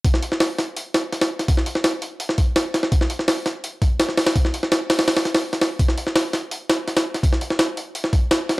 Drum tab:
HH |o-o-o-o-o-o-oo-o|o-o-o-o-o-o-o-o-|o-o-o-o-o-o-o-oo|o-o-o-oooooo-oo-|
SD |-o-oo-o---o-oo-o|-o-oo----o--o-oo|-o-oo-o-----oooo|-o-oo-oooooo-oo-|
BD |o---------------|o---------o-----|o---------o-----|o---------------|

HH |o-o-o-o-o-o-oo-o|o-o-o-o-o-o-o-o-|
SD |-o-oo-o---o-oo-o|-o-oo----o--o-o-|
BD |o---------------|o---------o-----|